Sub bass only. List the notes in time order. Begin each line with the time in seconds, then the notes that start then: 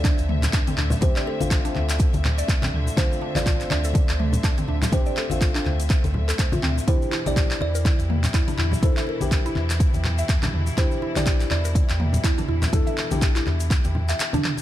Already playing: D2
0.19 D2
0.53 D2
0.78 D2
1.02 D2
1.41 A1
1.76 D2
2.14 D2
2.48 D2
2.73 D2
2.97 D2
3.36 A1
3.71 D2
4.09 D2
4.44 D2
4.68 D2
4.93 D2
5.31 A1
5.66 D2
6.04 D2
6.39 D2
6.64 D2
6.88 E2
7.26 A#1
7.61 E2
7.99 E2
8.34 E2
8.58 E2
8.83 E2
9.21 A#1
9.56 E2
9.94 E2
10.29 E2
10.54 E2
10.78 E2
11.17 A#1
11.51 E2
11.90 E2
12.24 E2
12.49 E2
12.73 E2
13.12 A#1
13.47 E2
13.85 E2